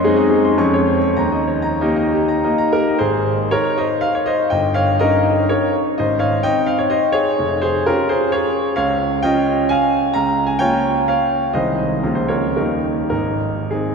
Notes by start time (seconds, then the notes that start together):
Already playing: F#2 C#5 D#5 C6
0.04 G#3 C4 D#4 G#4
0.16 D#5
0.30 G#4
0.45 C6
0.58 F2 G#3 C#4 C#6
0.74 C#5
0.87 C5
1.02 C#6
1.17 D#2 A#5
1.32 D#5
1.47 C#5
1.62 A#5
1.81 A#3 D#4 G4
1.96 D#5
2.13 G4
2.28 A#5
2.44 A#3 D#4 D#5
2.58 A#5
2.73 G4 A#4
2.88 D#5
2.99 G#1 G#4 C5
3.51 D#4 A#4 C#5
3.78 C5 D#5
4.01 F5
4.15 C#5
4.26 C5 D#5
4.50 G1 D#5 G5
4.74 C#5 F5
4.99 C#4 D#4 A#4 D#5
5.49 A#4 C#5
5.98 G#1 C5 D#5
6.19 C#5 F5
6.43 C4 D#4 D#5 G5
6.66 F5
6.79 C#5
6.90 C5 D#5
7.12 G#4 C#5
7.39 F1
7.62 G#4 C5
7.86 C#4 F4 G4 A#4
8.09 G#4 C5
8.32 G#4 C#5
8.76 C#2 C#5 F5
9.23 C#4 F4 D#5 G5
9.69 F5 G#5
10.14 C#2 F5 A#5
10.46 G#5
10.59 A#3 F4 C#5 G5
11.08 C#5 F5
11.53 C2 D#3 G#3 G#4 C5 D#5
12.03 C#2 F3 A#3 F4
12.15 C5
12.28 A#4 C#5
12.56 D#2 G3 A#3 D#4 G4 A#4
13.10 G#1 D#4 A#4
13.71 C4 D#4 G#4